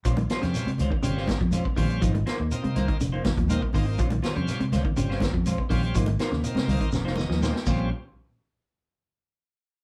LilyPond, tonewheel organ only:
\new Staff \with { instrumentName = "Tonewheel organ" } { \time 4/4 \key bes \dorian \tempo 4 = 122 << { r1 | r1 | r1 | r2 r8 ees''8 g''8 r8 |
r1 | } \\ { r8. <g c' des' f'>8 r8. <g c' des' f'>8. r8. <g c' des' f'>8 | r4 <bes c' ees' f'>4 r4 <bes c' ees' f'>16 r16 <bes c' ees' f'>8 | r8. <g c' des' f'>8 r8. <g c' des' f'>8. r8. <g c' des' f'>8 | r4 <bes c' ees' f'>4 r4 <bes c' ees' f'>16 r16 <g c' des' f'>8 |
r1 | } >> }